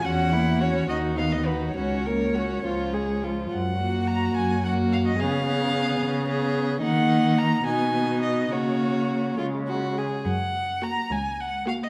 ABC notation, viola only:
X:1
M:6/8
L:1/8
Q:3/8=71
K:F#
V:1 name="Viola"
C A, C D B, D | C A, C E, G, E, | z A,3 A,2 | B, B,3 B,2 |
A,3 B,3 | A,3 G,2 z | z2 A, z2 A, |]